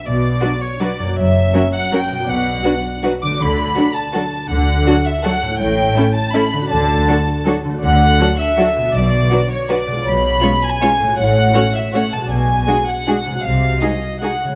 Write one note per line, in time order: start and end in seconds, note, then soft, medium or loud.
0.00 1.11 B2 soft
0.00 1.13 B3 soft
0.00 1.08 F#4 soft
0.00 1.18 D5 soft
0.06 0.37 B1 soft
0.06 0.37 B2 medium
0.06 0.63 D5 medium
0.41 0.51 F#3 soft
0.41 0.51 D4 soft
0.41 0.49 F#4 soft
0.41 0.49 B4 soft
0.63 0.82 C#5 medium
0.80 0.88 F#3 soft
0.80 0.88 D4 soft
0.80 0.89 F#4 soft
0.80 0.90 B4 soft
0.80 1.19 D5 medium
0.99 2.21 F#2 soft
1.04 2.23 A#3 soft
1.09 2.19 F#4 soft
1.13 2.28 C#5 soft
1.18 1.49 F#1 medium
1.18 1.49 F#2 medium
1.18 1.74 E5 medium
1.53 1.63 F#3 soft
1.53 1.62 C#4 soft
1.53 1.62 F#4 soft
1.53 1.61 A#4 soft
1.75 1.93 F#5 medium
1.92 2.01 F#3 soft
1.92 2.01 C#4 soft
1.92 2.01 F#4 soft
1.92 2.00 A#4 soft
1.92 2.30 G5 medium
2.11 3.33 B2 soft
2.15 3.35 B3 soft
2.20 3.30 F#4 soft
2.24 3.34 D5 soft
2.29 2.59 B1 medium
2.29 2.59 B2 medium
2.29 3.04 F#5 medium
2.64 2.73 F#3 soft
2.64 2.72 D4 soft
2.64 2.72 F#4 soft
2.64 2.72 B4 soft
3.03 3.12 F#3 soft
3.03 3.11 D4 soft
3.03 3.11 F#4 soft
3.03 3.12 B4 soft
3.23 5.52 D3 soft
3.23 3.39 D6 medium
3.27 5.46 A3 soft
3.31 5.57 F#4 soft
3.36 5.59 D5 soft
3.40 3.71 D2 medium
3.40 3.71 D3 medium
3.40 3.96 B5 medium
3.76 3.85 F#3 soft
3.76 3.85 D4 soft
3.76 3.84 F#4 soft
3.76 3.84 A4 soft
3.97 4.51 A5 medium
4.13 4.23 F#3 soft
4.13 4.23 D4 soft
4.13 4.21 F#4 soft
4.13 4.21 A4 medium
4.51 4.81 D2 medium
4.51 4.81 D3 medium
4.51 5.05 F#5 medium
4.87 4.95 F#3 medium
4.87 4.95 D4 medium
4.87 4.95 F#4 medium
4.87 4.95 A4 soft
5.06 5.24 E5 medium
5.23 5.33 F#3 medium
5.23 5.33 D4 soft
5.23 5.31 F#4 medium
5.23 5.31 A4 medium
5.23 5.60 F#5 medium
5.42 6.64 A2 medium
5.47 6.56 A3 soft
5.51 6.68 E4 soft
5.56 6.70 C#5 soft
5.60 5.90 A1 medium
5.60 5.90 A2 medium
5.60 6.15 G5 medium
5.96 6.05 A3 medium
5.96 6.05 C#4 medium
5.96 6.04 E4 soft
5.96 6.04 A4 medium
6.15 6.34 A5 medium
6.34 6.42 A3 medium
6.34 6.42 C#4 soft
6.34 6.43 E4 medium
6.34 6.42 A4 medium
6.34 6.71 B5 medium
6.53 7.64 D3 medium
6.58 7.68 A3 soft
6.62 7.73 F#4 soft
6.66 7.77 D5 soft
6.66 7.45 A5 medium
6.71 7.02 D2 medium
6.71 7.02 D3 medium
7.08 7.16 F#3 medium
7.08 7.16 D4 medium
7.08 7.17 F#4 medium
7.08 7.16 A4 medium
7.46 7.54 F#3 medium
7.46 7.54 D4 medium
7.46 7.54 F#4 medium
7.46 7.54 A4 medium
7.65 8.87 D3 medium
7.69 8.89 A3 soft
7.74 8.84 F#4 soft
7.78 8.89 D5 soft
7.82 8.13 D2 medium
7.82 8.14 D3 medium
7.82 8.35 F#5 loud
8.20 8.28 F#3 medium
8.20 8.28 D4 medium
8.20 8.29 F#4 medium
8.20 8.29 A4 medium
8.39 8.95 E5 medium
8.57 8.65 F#3 soft
8.57 8.66 D4 medium
8.57 8.66 F#4 medium
8.57 8.66 A4 medium
8.77 9.86 B2 medium
8.81 11.13 B3 soft
8.86 10.03 F#4 soft
8.90 10.05 D5 soft
8.95 9.25 B1 medium
8.95 9.26 B2 medium
8.95 9.51 D5 medium
9.31 9.40 F#3 soft
9.31 9.40 D4 medium
9.31 9.39 F#4 medium
9.31 9.40 B4 medium
9.51 9.69 C#5 medium
9.69 9.78 F#3 medium
9.69 9.78 D4 medium
9.69 9.77 F#4 medium
9.69 9.77 B4 medium
9.69 10.06 D5 medium
9.87 11.11 B2 medium
9.92 11.13 G#3 soft
9.96 11.15 F4 soft
10.01 11.12 C#5 soft
10.05 10.37 B1 medium
10.05 10.37 B2 medium
10.05 10.63 B5 loud
10.41 10.51 G#3 soft
10.41 10.51 C#4 medium
10.41 10.49 F4 medium
10.41 10.49 C#5 soft
10.64 11.19 G#5 medium
10.81 10.89 G#3 medium
10.81 10.89 C#4 soft
10.81 10.89 F4 medium
10.81 10.89 C#5 medium
11.00 12.23 A2 medium
11.04 12.25 A3 soft
11.08 12.20 F#4 soft
11.13 12.29 C#5 soft
11.19 11.49 A1 medium
11.19 11.49 A2 medium
11.19 11.74 F#5 medium
11.54 11.63 A3 soft
11.54 11.63 C#4 soft
11.54 11.62 F#4 soft
11.54 11.63 C#5 soft
11.75 11.94 E5 medium
11.93 12.03 A3 soft
11.93 12.03 C#4 soft
11.93 12.02 F#4 soft
11.93 12.01 C#5 medium
11.93 12.13 F#5 medium
12.12 13.37 B2 medium
12.12 12.31 A5 medium
12.18 13.29 G#3 soft
12.18 13.34 F#4 soft
12.26 12.61 B1 medium
12.26 13.43 D5 soft
12.31 12.62 B2 medium
12.31 12.87 G#5 medium
12.68 12.76 G#3 soft
12.68 12.76 D4 soft
12.68 12.76 F#4 soft
12.68 12.76 G#4 soft
12.87 13.44 F#5 medium
13.07 13.16 G#3 soft
13.07 13.15 D4 soft
13.07 13.15 F#4 soft
13.07 13.15 G#4 soft
13.26 14.54 C3 soft
13.30 14.47 G#3 soft
13.35 14.55 F#4 soft
13.40 14.55 D#5 soft
13.40 13.82 F5 medium
13.44 13.76 C2 medium
13.44 13.76 C3 soft
13.81 13.90 G#3 soft
13.81 13.90 D#4 soft
13.81 13.90 F#4 soft
13.81 13.90 G#4 soft
13.81 14.22 D#5 medium
14.21 14.30 G#3 soft
14.21 14.30 D#4 soft
14.21 14.31 F#4 soft
14.21 14.31 G#4 soft
14.21 14.55 F#5 medium
14.44 14.55 C#3 soft
14.48 14.55 G#3 soft